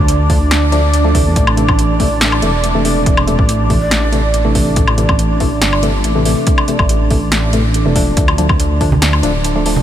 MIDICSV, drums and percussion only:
0, 0, Header, 1, 2, 480
1, 0, Start_track
1, 0, Tempo, 425532
1, 1535, Time_signature, 4, 2, 24, 8
1, 11083, End_track
2, 0, Start_track
2, 0, Title_t, "Drums"
2, 95, Note_on_c, 9, 42, 82
2, 208, Note_off_c, 9, 42, 0
2, 335, Note_on_c, 9, 46, 57
2, 336, Note_on_c, 9, 36, 70
2, 448, Note_off_c, 9, 46, 0
2, 449, Note_off_c, 9, 36, 0
2, 576, Note_on_c, 9, 38, 124
2, 576, Note_on_c, 9, 42, 82
2, 689, Note_off_c, 9, 38, 0
2, 689, Note_off_c, 9, 42, 0
2, 816, Note_on_c, 9, 42, 53
2, 928, Note_off_c, 9, 42, 0
2, 1055, Note_on_c, 9, 42, 82
2, 1168, Note_off_c, 9, 42, 0
2, 1295, Note_on_c, 9, 46, 84
2, 1297, Note_on_c, 9, 36, 62
2, 1408, Note_off_c, 9, 46, 0
2, 1410, Note_off_c, 9, 36, 0
2, 1536, Note_on_c, 9, 42, 72
2, 1537, Note_on_c, 9, 36, 115
2, 1648, Note_off_c, 9, 42, 0
2, 1650, Note_off_c, 9, 36, 0
2, 1661, Note_on_c, 9, 77, 85
2, 1774, Note_off_c, 9, 77, 0
2, 1775, Note_on_c, 9, 42, 49
2, 1888, Note_off_c, 9, 42, 0
2, 1901, Note_on_c, 9, 77, 65
2, 1903, Note_on_c, 9, 36, 105
2, 2014, Note_off_c, 9, 77, 0
2, 2016, Note_off_c, 9, 36, 0
2, 2016, Note_on_c, 9, 42, 76
2, 2129, Note_off_c, 9, 42, 0
2, 2254, Note_on_c, 9, 46, 60
2, 2257, Note_on_c, 9, 36, 64
2, 2367, Note_off_c, 9, 46, 0
2, 2370, Note_off_c, 9, 36, 0
2, 2494, Note_on_c, 9, 38, 125
2, 2494, Note_on_c, 9, 42, 77
2, 2607, Note_off_c, 9, 38, 0
2, 2607, Note_off_c, 9, 42, 0
2, 2620, Note_on_c, 9, 77, 67
2, 2733, Note_off_c, 9, 77, 0
2, 2734, Note_on_c, 9, 42, 52
2, 2846, Note_off_c, 9, 42, 0
2, 2974, Note_on_c, 9, 42, 78
2, 3087, Note_off_c, 9, 42, 0
2, 3215, Note_on_c, 9, 46, 89
2, 3327, Note_off_c, 9, 46, 0
2, 3455, Note_on_c, 9, 42, 73
2, 3456, Note_on_c, 9, 36, 120
2, 3568, Note_off_c, 9, 42, 0
2, 3569, Note_off_c, 9, 36, 0
2, 3580, Note_on_c, 9, 77, 82
2, 3693, Note_off_c, 9, 77, 0
2, 3695, Note_on_c, 9, 42, 53
2, 3808, Note_off_c, 9, 42, 0
2, 3822, Note_on_c, 9, 36, 98
2, 3934, Note_off_c, 9, 36, 0
2, 3935, Note_on_c, 9, 42, 80
2, 4047, Note_off_c, 9, 42, 0
2, 4174, Note_on_c, 9, 46, 59
2, 4175, Note_on_c, 9, 36, 64
2, 4287, Note_off_c, 9, 46, 0
2, 4288, Note_off_c, 9, 36, 0
2, 4414, Note_on_c, 9, 38, 115
2, 4414, Note_on_c, 9, 42, 82
2, 4527, Note_off_c, 9, 38, 0
2, 4527, Note_off_c, 9, 42, 0
2, 4653, Note_on_c, 9, 42, 51
2, 4766, Note_off_c, 9, 42, 0
2, 4894, Note_on_c, 9, 42, 77
2, 5007, Note_off_c, 9, 42, 0
2, 5133, Note_on_c, 9, 46, 87
2, 5136, Note_on_c, 9, 36, 61
2, 5246, Note_off_c, 9, 46, 0
2, 5248, Note_off_c, 9, 36, 0
2, 5373, Note_on_c, 9, 42, 76
2, 5376, Note_on_c, 9, 36, 114
2, 5486, Note_off_c, 9, 42, 0
2, 5489, Note_off_c, 9, 36, 0
2, 5499, Note_on_c, 9, 77, 78
2, 5612, Note_off_c, 9, 77, 0
2, 5615, Note_on_c, 9, 42, 54
2, 5728, Note_off_c, 9, 42, 0
2, 5740, Note_on_c, 9, 77, 66
2, 5743, Note_on_c, 9, 36, 101
2, 5853, Note_off_c, 9, 77, 0
2, 5853, Note_on_c, 9, 42, 80
2, 5855, Note_off_c, 9, 36, 0
2, 5966, Note_off_c, 9, 42, 0
2, 6094, Note_on_c, 9, 46, 62
2, 6097, Note_on_c, 9, 36, 66
2, 6207, Note_off_c, 9, 46, 0
2, 6210, Note_off_c, 9, 36, 0
2, 6334, Note_on_c, 9, 38, 121
2, 6334, Note_on_c, 9, 42, 80
2, 6447, Note_off_c, 9, 38, 0
2, 6447, Note_off_c, 9, 42, 0
2, 6461, Note_on_c, 9, 77, 62
2, 6574, Note_off_c, 9, 77, 0
2, 6575, Note_on_c, 9, 42, 54
2, 6688, Note_off_c, 9, 42, 0
2, 6814, Note_on_c, 9, 42, 83
2, 6927, Note_off_c, 9, 42, 0
2, 7055, Note_on_c, 9, 46, 94
2, 7168, Note_off_c, 9, 46, 0
2, 7294, Note_on_c, 9, 42, 79
2, 7298, Note_on_c, 9, 36, 115
2, 7407, Note_off_c, 9, 42, 0
2, 7411, Note_off_c, 9, 36, 0
2, 7420, Note_on_c, 9, 77, 75
2, 7533, Note_off_c, 9, 77, 0
2, 7534, Note_on_c, 9, 42, 54
2, 7647, Note_off_c, 9, 42, 0
2, 7660, Note_on_c, 9, 77, 61
2, 7664, Note_on_c, 9, 36, 98
2, 7773, Note_off_c, 9, 77, 0
2, 7775, Note_on_c, 9, 42, 83
2, 7776, Note_off_c, 9, 36, 0
2, 7888, Note_off_c, 9, 42, 0
2, 8014, Note_on_c, 9, 46, 63
2, 8018, Note_on_c, 9, 36, 65
2, 8127, Note_off_c, 9, 46, 0
2, 8131, Note_off_c, 9, 36, 0
2, 8254, Note_on_c, 9, 38, 117
2, 8254, Note_on_c, 9, 42, 83
2, 8367, Note_off_c, 9, 38, 0
2, 8367, Note_off_c, 9, 42, 0
2, 8494, Note_on_c, 9, 42, 56
2, 8607, Note_off_c, 9, 42, 0
2, 8734, Note_on_c, 9, 42, 83
2, 8847, Note_off_c, 9, 42, 0
2, 8975, Note_on_c, 9, 46, 95
2, 8977, Note_on_c, 9, 36, 60
2, 9088, Note_off_c, 9, 46, 0
2, 9090, Note_off_c, 9, 36, 0
2, 9214, Note_on_c, 9, 42, 84
2, 9217, Note_on_c, 9, 36, 118
2, 9327, Note_off_c, 9, 42, 0
2, 9330, Note_off_c, 9, 36, 0
2, 9341, Note_on_c, 9, 77, 77
2, 9454, Note_off_c, 9, 77, 0
2, 9455, Note_on_c, 9, 42, 59
2, 9459, Note_on_c, 9, 63, 65
2, 9568, Note_off_c, 9, 42, 0
2, 9572, Note_off_c, 9, 63, 0
2, 9581, Note_on_c, 9, 77, 60
2, 9582, Note_on_c, 9, 36, 108
2, 9694, Note_off_c, 9, 77, 0
2, 9695, Note_off_c, 9, 36, 0
2, 9696, Note_on_c, 9, 42, 84
2, 9809, Note_off_c, 9, 42, 0
2, 9936, Note_on_c, 9, 36, 64
2, 9936, Note_on_c, 9, 46, 62
2, 10048, Note_off_c, 9, 46, 0
2, 10049, Note_off_c, 9, 36, 0
2, 10063, Note_on_c, 9, 64, 82
2, 10175, Note_on_c, 9, 38, 127
2, 10175, Note_on_c, 9, 42, 82
2, 10176, Note_off_c, 9, 64, 0
2, 10287, Note_off_c, 9, 38, 0
2, 10287, Note_off_c, 9, 42, 0
2, 10301, Note_on_c, 9, 77, 58
2, 10414, Note_off_c, 9, 77, 0
2, 10415, Note_on_c, 9, 42, 55
2, 10528, Note_off_c, 9, 42, 0
2, 10654, Note_on_c, 9, 42, 85
2, 10766, Note_off_c, 9, 42, 0
2, 10894, Note_on_c, 9, 46, 88
2, 11007, Note_off_c, 9, 46, 0
2, 11014, Note_on_c, 9, 64, 78
2, 11083, Note_off_c, 9, 64, 0
2, 11083, End_track
0, 0, End_of_file